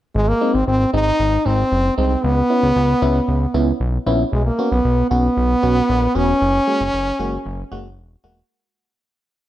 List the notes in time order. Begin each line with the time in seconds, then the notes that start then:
0.15 G#1 G#3
0.28 A#3
0.41 G#3 C4 D#4
0.54 G#1 C4
0.67 G#1 C4
0.93 G#1 G#3 C4 D#4
1.20 G#1
1.46 G#1 G#3 C4 D#4
1.72 F#1
1.98 C2 G#3 C4 D#4
2.24 C#2 B3
2.50 B3 C#4 E4
2.63 C#2
2.76 C#2
3.02 C#2 B3 C#4 E4
3.28 C#2
3.54 C#2 B3 C#4 E4
3.80 B1
4.06 A#1 B3 C#4 E4
4.33 B1 G#3
4.46 A#3
4.59 B3 C#4 F#4
4.72 B1 B3
4.85 B1
5.11 B1 B3 C#4 F#4
5.37 B1
5.63 B1 B3 C#4 F#4
5.89 A#1
6.15 E1 B3 C#4 F#4
6.41 F#1
6.67 G#3 A#3 F#4
6.80 F#1
6.93 F#1
7.19 F#1 G#3 A#3 F#4
7.46 F#1
7.72 F#1 G#3 A#3 F#4
7.98 E1
8.24 E1 G#3 A#3 F#4